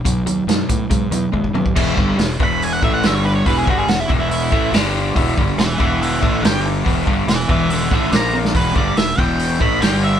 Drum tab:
CC |----------------|x---------------|----------------|----------------|
HH |x-x-x-x-x-x-----|----o---o---o---|o---o---o---o---|o---o---o---o---|
SD |----o-----------|----o-------o---|----o-------o---|----o-------o---|
T1 |----------------|----------------|----------------|----------------|
T2 |--------------o-|----------------|----------------|----------------|
BD |o-----o-o---oo-o|o-o---o---o-----|o-o---o---o-----|o-o---o---o-----|

CC |----------------|----------------|
HH |o---o---o---o---|o---o---o---o---|
SD |----o-------o--o|----o-------o---|
T1 |--------------o-|----------------|
T2 |----------------|----------------|
BD |o-o---o---o-----|o-o---o---o-----|